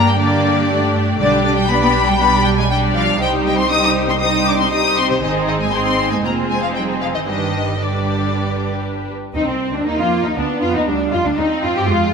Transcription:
Already playing: double bass section G2, viola section A#3 D4, violin section G4 D5
0.06 cello section G3, violin section G5
0.18 cello section D3, viola section A#3 D4, violin section G4 D5
0.70 viola section A3
1.19 double bass section B1, cello section D3, viola section G3 D4, violin section G4 D5
1.44 cello section D3, violin section D5
1.57 cello section G3, violin section G5
1.69 viola section G3 D4, cello section B3, violin section G4 D5 B5
1.82 cello section B3, violin section B5
2.07 cello section G3, violin section G5
2.19 viola section G3 D4, cello section B3, violin section G4 D5 B5
2.45 cello section G3, violin section G5
2.57 cello section G#3, violin section G#5
2.70 cello section G3, viola section G3 D4, violin section G4 D5 G5
2.94 cello section F3, violin section F5
3.19 double bass section C2, cello section G3, viola section G3 D#4, violin section G4 C5 G5
3.45 cello section G3, violin section G5
3.58 cello section C4, violin section C6
3.70 viola section G3 D#4, cello section D#4, violin section G4 C5 D#6
3.83 cello section D#4, violin section D#6
4.08 cello section C4, violin section C6
4.20 viola section G3 D#4, cello section D#4, violin section G4 C5 D#6
4.46 cello section D4, violin section D6
4.58 cello section C4, violin section C6
4.71 viola section G3 D#4, cello section D#4, violin section G4 C5 D#6
4.97 cello section C4, violin section C6
5.10 cello section C3, violin section C5
5.21 double bass section G#1, cello section D#3, viola section C4 D#4, violin section G#4 C5 D#5
5.48 cello section D#3, violin section D#5
5.60 cello section G#3, violin section G#5
5.72 viola section C4 D#4, cello section C4, violin section G#4 C5 C6
5.85 cello section C4, violin section C6
6.11 cello section G#3, violin section G#5
6.24 double bass section F1, cello section A#3, viola section C4 F4, violin section G#4 C5 A#5
6.50 cello section G#3, violin section G#5
6.62 cello section F3, violin section F5
6.75 cello section G3, viola section D#4, violin section G5
7.01 cello section F3, violin section F5
7.15 cello section D#3, violin section D#5
7.27 double bass section G1, cello section D#3, viola section G3 D4, violin section G4 B4 D#5
7.80 cello section D3, viola section G3 D4, violin section G4 B4 D5
9.34 double bass section D#2, viola section C4, violin section D#4, cello section D#4
9.47 double bass section C2, violin section C4, cello section C4
9.73 double bass section D2, violin section D4, cello section D4
9.85 double bass section D#2, viola section A#3, violin section D#4, cello section D#4
9.98 double bass section F2, violin section F4, cello section F4
10.23 double bass section D#2, violin section D#4, cello section D#4
10.36 double bass section D2, viola section B3, violin section D4, cello section D4
10.62 double bass section F2, violin section F4, cello section F4
10.74 double bass section D#2, violin section D#4, cello section D#4
10.87 double bass section D2, viola section G3, violin section D4, cello section D4
11.12 double bass section F2, cello section F4, violin section F4
11.25 double bass section D2, violin section D4, cello section D4
11.37 double bass section D#2, viola section C4, violin section D#4, cello section D#4
11.63 double bass section F2, violin section F4, cello section F4
11.76 double bass section G2, violin section G4, cello section G4
11.88 double bass section F2, viola section G#3, violin section F4, cello section F4

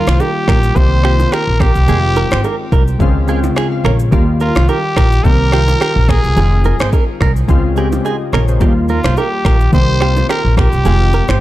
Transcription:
Already playing: synth keys D#3 G3 A#3 F4, trumpet F4
0.07 upright bass C2, clean electric guitar C5, finger snap, cross-stick, low bongo, shaker
0.20 trumpet G4, clean electric guitar A#4, high bongo, shaker
0.48 upright bass A#1, clean electric guitar A#4, finger snap, kick, cross-stick, low bongo, shaker
0.63 shaker
0.75 upright bass C2, synth keys D#3 A#3 C4 G4, trumpet C5, kick, low conga, shaker
1.03 synth keys D#3 A#3 C4 F4, clean electric guitar G4, finger snap, cross-stick, shaker
1.20 low bongo, shaker
1.32 clean electric guitar G4, trumpet A#4, finger snap, cross-stick, high bongo, shaker
1.47 upright bass A#1
1.60 trumpet G4, clean electric guitar A#4, finger snap, kick, cross-stick, high bongo, low conga, shaker
1.75 upright bass C2, shaker
1.87 upright bass F1, synth keys D#3 G#3 C4 F4, clean electric guitar G#4, low conga, shaker
2.16 clean electric guitar A#4, low bongo, shaker
2.31 upright bass G#1, clean electric guitar C5, finger snap, cross-stick, low bongo, shaker
2.44 clean electric guitar A#4, high bongo, shaker
2.72 upright bass C2, clean electric guitar A#4, kick, low bongo, shaker
2.88 shaker
2.99 upright bass C#2, synth keys C#3 G#3 C4 F4, kick, low conga, shaker
3.27 synth keys C#3 G#3 C4 F4 G5, clean electric guitar G#4, shaker
3.44 low bongo, shaker
3.56 clean electric guitar G#4, synth keys F5, finger snap, cross-stick, high bongo, shaker
3.72 synth keys F5
3.84 upright bass A#1, clean electric guitar A#4, synth keys C#5, finger snap, cross-stick, high bongo, low conga, shaker
4.00 shaker
4.11 upright bass D#2, synth keys D#3 G3 A#3 F4, clean electric guitar G4, kick, low conga, shaker
4.40 trumpet F4, clean electric guitar A#4, low bongo, shaker
4.55 upright bass C2, clean electric guitar C5, finger snap, cross-stick, low bongo, shaker
4.68 trumpet G4, clean electric guitar A#4, high bongo, shaker
4.96 upright bass A#1, clean electric guitar A#4, finger snap, kick, cross-stick, low bongo, shaker
5.12 shaker
5.23 upright bass C2, synth keys D#3 A#3 C4 G4, trumpet A#4, kick, low conga, shaker
5.51 synth keys D#3 A#3 C4 F4, clean electric guitar G4, finger snap, cross-stick, shaker
5.68 low bongo, shaker
5.81 clean electric guitar G4, finger snap, cross-stick, high bongo, shaker
5.96 upright bass A#1
6.09 trumpet G#4, clean electric guitar A#4, finger snap, kick, cross-stick, high bongo, low conga, shaker
6.24 upright bass C2, shaker
6.36 upright bass F1, synth keys D#3 G3 C4 F4, clean electric guitar G#4, low conga, shaker
6.43 synth keys G#3
6.64 clean electric guitar A#4, low bongo, shaker
6.80 upright bass G#1, clean electric guitar C5, finger snap, cross-stick, low bongo, shaker
6.93 clean electric guitar A#4, kick, high bongo, shaker
7.21 upright bass C2, clean electric guitar A#4, finger snap, kick, cross-stick, low bongo, shaker
7.36 shaker
7.48 upright bass C#2, synth keys C#3 G#3 C4 F4, kick, low conga, shaker
7.76 synth keys C#3 G#3 C4 G4, clean electric guitar G#4, shaker
7.92 low bongo, shaker
8.05 clean electric guitar G#4, synth keys C5 D#5, high bongo, shaker
8.33 upright bass A#1, synth keys A#4 C#5, clean electric guitar A#4, finger snap, cross-stick, high bongo, low conga, shaker
8.48 synth keys G#4 C5, shaker
8.60 upright bass D#2, synth keys D#3 G3 A#3 F4, clean electric guitar G4, kick, low conga, shaker
8.88 trumpet F4, clean electric guitar A#4, low bongo, shaker
9.04 upright bass C2, clean electric guitar C5, finger snap, cross-stick, low bongo, shaker
9.17 trumpet G4, clean electric guitar A#4, high bongo, shaker
9.45 upright bass A#1, clean electric guitar A#4, finger snap, kick, cross-stick, low bongo, shaker
9.60 shaker
9.72 upright bass C2, synth keys D#3 A#3 C4 G4, trumpet C5, kick, low conga, shaker
10.00 synth keys D#3 A#3 C4 F4, clean electric guitar G4, finger snap, cross-stick, shaker
10.17 low bongo, shaker
10.29 clean electric guitar G4, trumpet A#4, finger snap, cross-stick, high bongo, shaker
10.45 upright bass A#1
10.57 trumpet G4, clean electric guitar A#4, finger snap, kick, cross-stick, high bongo, low conga, shaker
10.72 upright bass C2, shaker
10.84 upright bass F1, synth keys D#3 G#3 C4 F4, clean electric guitar G#4, low conga, shaker
11.13 clean electric guitar A#4, low bongo, shaker
11.28 upright bass G#1, clean electric guitar C5, finger snap, cross-stick, low bongo, shaker

